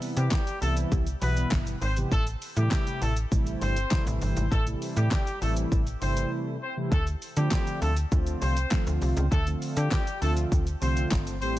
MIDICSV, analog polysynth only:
0, 0, Header, 1, 2, 480
1, 0, Start_track
1, 0, Tempo, 600000
1, 1694, Time_signature, 4, 2, 24, 8
1, 9272, End_track
2, 0, Start_track
2, 0, Title_t, "Analog polysynth"
2, 0, Program_c, 0, 90
2, 0, Note_on_c, 0, 48, 76
2, 0, Note_on_c, 0, 52, 72
2, 0, Note_on_c, 0, 55, 68
2, 0, Note_on_c, 0, 59, 70
2, 0, Note_on_c, 0, 64, 82
2, 333, Note_off_c, 0, 48, 0
2, 334, Note_off_c, 0, 52, 0
2, 334, Note_off_c, 0, 55, 0
2, 335, Note_off_c, 0, 59, 0
2, 335, Note_off_c, 0, 64, 0
2, 492, Note_on_c, 0, 48, 83
2, 493, Note_on_c, 0, 52, 75
2, 493, Note_on_c, 0, 55, 75
2, 494, Note_on_c, 0, 59, 75
2, 496, Note_on_c, 0, 64, 94
2, 845, Note_off_c, 0, 48, 0
2, 845, Note_off_c, 0, 52, 0
2, 846, Note_off_c, 0, 55, 0
2, 846, Note_off_c, 0, 59, 0
2, 847, Note_off_c, 0, 64, 0
2, 972, Note_on_c, 0, 47, 78
2, 973, Note_on_c, 0, 52, 75
2, 974, Note_on_c, 0, 55, 77
2, 974, Note_on_c, 0, 59, 75
2, 975, Note_on_c, 0, 64, 89
2, 1413, Note_off_c, 0, 47, 0
2, 1413, Note_off_c, 0, 52, 0
2, 1414, Note_off_c, 0, 55, 0
2, 1414, Note_off_c, 0, 59, 0
2, 1415, Note_off_c, 0, 64, 0
2, 1572, Note_on_c, 0, 48, 86
2, 1573, Note_on_c, 0, 52, 81
2, 1574, Note_on_c, 0, 55, 81
2, 1575, Note_on_c, 0, 59, 82
2, 1576, Note_on_c, 0, 67, 104
2, 1684, Note_off_c, 0, 48, 0
2, 1685, Note_off_c, 0, 52, 0
2, 1686, Note_off_c, 0, 55, 0
2, 1687, Note_off_c, 0, 59, 0
2, 1688, Note_off_c, 0, 67, 0
2, 2051, Note_on_c, 0, 48, 75
2, 2052, Note_on_c, 0, 52, 73
2, 2053, Note_on_c, 0, 55, 70
2, 2054, Note_on_c, 0, 57, 68
2, 2055, Note_on_c, 0, 64, 83
2, 2493, Note_off_c, 0, 48, 0
2, 2493, Note_off_c, 0, 52, 0
2, 2494, Note_off_c, 0, 55, 0
2, 2494, Note_off_c, 0, 57, 0
2, 2495, Note_off_c, 0, 64, 0
2, 2651, Note_on_c, 0, 48, 84
2, 2653, Note_on_c, 0, 52, 81
2, 2654, Note_on_c, 0, 55, 75
2, 2654, Note_on_c, 0, 57, 75
2, 2656, Note_on_c, 0, 64, 99
2, 3005, Note_off_c, 0, 48, 0
2, 3005, Note_off_c, 0, 52, 0
2, 3006, Note_off_c, 0, 55, 0
2, 3006, Note_off_c, 0, 57, 0
2, 3007, Note_off_c, 0, 64, 0
2, 3132, Note_on_c, 0, 48, 92
2, 3132, Note_on_c, 0, 52, 85
2, 3133, Note_on_c, 0, 55, 88
2, 3134, Note_on_c, 0, 57, 83
2, 3135, Note_on_c, 0, 64, 103
2, 3573, Note_off_c, 0, 48, 0
2, 3573, Note_off_c, 0, 52, 0
2, 3574, Note_off_c, 0, 55, 0
2, 3574, Note_off_c, 0, 57, 0
2, 3575, Note_off_c, 0, 64, 0
2, 3731, Note_on_c, 0, 48, 78
2, 3732, Note_on_c, 0, 52, 71
2, 3732, Note_on_c, 0, 55, 73
2, 3734, Note_on_c, 0, 57, 70
2, 3734, Note_on_c, 0, 64, 84
2, 4172, Note_off_c, 0, 48, 0
2, 4173, Note_off_c, 0, 52, 0
2, 4173, Note_off_c, 0, 55, 0
2, 4174, Note_off_c, 0, 57, 0
2, 4174, Note_off_c, 0, 64, 0
2, 4332, Note_on_c, 0, 48, 84
2, 4332, Note_on_c, 0, 52, 76
2, 4334, Note_on_c, 0, 55, 75
2, 4335, Note_on_c, 0, 57, 79
2, 4336, Note_on_c, 0, 64, 92
2, 4685, Note_off_c, 0, 48, 0
2, 4685, Note_off_c, 0, 52, 0
2, 4686, Note_off_c, 0, 55, 0
2, 4686, Note_off_c, 0, 57, 0
2, 4687, Note_off_c, 0, 64, 0
2, 4811, Note_on_c, 0, 48, 82
2, 4812, Note_on_c, 0, 52, 75
2, 4813, Note_on_c, 0, 55, 73
2, 4814, Note_on_c, 0, 57, 75
2, 4815, Note_on_c, 0, 64, 89
2, 5252, Note_off_c, 0, 48, 0
2, 5253, Note_off_c, 0, 52, 0
2, 5253, Note_off_c, 0, 55, 0
2, 5254, Note_off_c, 0, 57, 0
2, 5255, Note_off_c, 0, 64, 0
2, 5411, Note_on_c, 0, 48, 85
2, 5412, Note_on_c, 0, 52, 80
2, 5413, Note_on_c, 0, 55, 84
2, 5414, Note_on_c, 0, 57, 80
2, 5415, Note_on_c, 0, 64, 100
2, 5523, Note_off_c, 0, 48, 0
2, 5524, Note_off_c, 0, 52, 0
2, 5525, Note_off_c, 0, 55, 0
2, 5526, Note_off_c, 0, 57, 0
2, 5527, Note_off_c, 0, 64, 0
2, 5892, Note_on_c, 0, 50, 77
2, 5893, Note_on_c, 0, 53, 68
2, 5894, Note_on_c, 0, 57, 71
2, 5894, Note_on_c, 0, 60, 72
2, 5896, Note_on_c, 0, 65, 81
2, 6333, Note_off_c, 0, 50, 0
2, 6333, Note_off_c, 0, 53, 0
2, 6334, Note_off_c, 0, 57, 0
2, 6334, Note_off_c, 0, 60, 0
2, 6335, Note_off_c, 0, 65, 0
2, 6492, Note_on_c, 0, 50, 85
2, 6493, Note_on_c, 0, 53, 80
2, 6494, Note_on_c, 0, 57, 79
2, 6495, Note_on_c, 0, 60, 79
2, 6496, Note_on_c, 0, 65, 98
2, 6845, Note_off_c, 0, 50, 0
2, 6845, Note_off_c, 0, 53, 0
2, 6846, Note_off_c, 0, 57, 0
2, 6846, Note_off_c, 0, 60, 0
2, 6847, Note_off_c, 0, 65, 0
2, 6972, Note_on_c, 0, 50, 90
2, 6973, Note_on_c, 0, 53, 82
2, 6974, Note_on_c, 0, 57, 86
2, 6975, Note_on_c, 0, 60, 85
2, 6976, Note_on_c, 0, 65, 102
2, 7413, Note_off_c, 0, 50, 0
2, 7413, Note_off_c, 0, 53, 0
2, 7414, Note_off_c, 0, 57, 0
2, 7415, Note_off_c, 0, 60, 0
2, 7415, Note_off_c, 0, 65, 0
2, 7572, Note_on_c, 0, 50, 77
2, 7573, Note_on_c, 0, 53, 67
2, 7574, Note_on_c, 0, 57, 71
2, 7575, Note_on_c, 0, 60, 70
2, 7576, Note_on_c, 0, 65, 84
2, 8013, Note_off_c, 0, 50, 0
2, 8014, Note_off_c, 0, 53, 0
2, 8014, Note_off_c, 0, 57, 0
2, 8015, Note_off_c, 0, 60, 0
2, 8015, Note_off_c, 0, 65, 0
2, 8172, Note_on_c, 0, 50, 87
2, 8172, Note_on_c, 0, 53, 77
2, 8173, Note_on_c, 0, 57, 75
2, 8174, Note_on_c, 0, 60, 76
2, 8176, Note_on_c, 0, 65, 96
2, 8525, Note_off_c, 0, 50, 0
2, 8525, Note_off_c, 0, 53, 0
2, 8526, Note_off_c, 0, 57, 0
2, 8526, Note_off_c, 0, 60, 0
2, 8527, Note_off_c, 0, 65, 0
2, 8651, Note_on_c, 0, 50, 82
2, 8652, Note_on_c, 0, 53, 75
2, 8653, Note_on_c, 0, 57, 75
2, 8654, Note_on_c, 0, 60, 75
2, 8655, Note_on_c, 0, 65, 92
2, 9093, Note_off_c, 0, 50, 0
2, 9093, Note_off_c, 0, 53, 0
2, 9094, Note_off_c, 0, 57, 0
2, 9094, Note_off_c, 0, 60, 0
2, 9095, Note_off_c, 0, 65, 0
2, 9132, Note_on_c, 0, 52, 86
2, 9133, Note_on_c, 0, 55, 80
2, 9134, Note_on_c, 0, 57, 81
2, 9135, Note_on_c, 0, 60, 77
2, 9136, Note_on_c, 0, 67, 95
2, 9272, Note_off_c, 0, 52, 0
2, 9272, Note_off_c, 0, 55, 0
2, 9272, Note_off_c, 0, 57, 0
2, 9272, Note_off_c, 0, 60, 0
2, 9272, Note_off_c, 0, 67, 0
2, 9272, End_track
0, 0, End_of_file